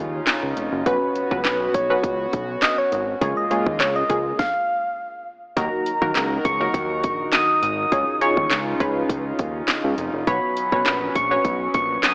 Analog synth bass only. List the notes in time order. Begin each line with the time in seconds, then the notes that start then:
0.00 D#2
0.43 C#2
0.57 F1
0.72 F#1
0.86 B1
1.31 C#2
1.45 B1
1.74 B1
2.04 C#2
2.33 B1
2.92 G#1
3.21 C#2
3.67 D#2
3.80 C#2
4.10 C#2
5.57 D#2
6.02 D#2
6.16 C#2
6.45 C#2
6.74 D#2
7.04 A#1
7.63 G#1
7.92 C#2
8.37 D#2
8.51 C#2
8.80 C#2
9.09 C#2
9.39 D#2
9.84 C#2
9.98 F1
10.13 F#1
10.27 B1
10.72 B1
10.86 A#1
11.16 A#1
11.45 B1
11.75 A#1